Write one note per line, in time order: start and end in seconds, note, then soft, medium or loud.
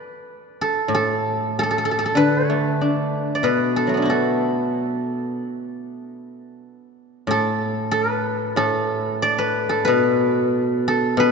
0.00 0.61 A4 medium
0.00 1.32 B4 medium
0.00 0.73 D5 medium
0.61 0.94 A4 medium
0.88 2.15 A2 soft
0.95 1.59 A4 medium
1.59 1.63 A4 medium
1.63 1.70 A4 medium
1.71 1.78 A4 medium
1.78 1.85 A4 soft
1.85 1.91 A4 medium
1.91 1.98 A4 soft
1.99 2.05 A4 medium
2.06 3.76 A4 soft
2.15 3.42 D3 soft
2.15 2.53 B4 medium
2.50 3.76 A3 soft
2.50 3.35 D5 medium
2.81 3.96 D4 soft
3.35 5.20 D5 medium
3.43 5.39 B2 soft
3.43 5.48 B4 medium
3.76 4.09 A4 medium
3.87 4.08 F#3 soft
3.87 7.22 A3 soft
3.94 7.04 B3 soft
3.94 6.77 D4 soft
4.02 6.63 E4 soft
4.02 6.49 F#4 soft
4.10 6.29 A4 medium
7.27 8.55 A2 soft
7.27 7.91 A4 medium
7.91 8.10 A4 medium
8.10 9.38 B4 medium
8.56 10.55 A2 soft
8.56 9.69 A4 medium
9.22 11.07 D5 medium
9.38 9.84 B4 medium
9.69 10.87 A4 medium
9.85 11.16 B2 soft
9.85 11.19 B4 medium
10.88 11.32 A4 medium
11.17 11.32 B2 medium
11.17 11.32 B4 medium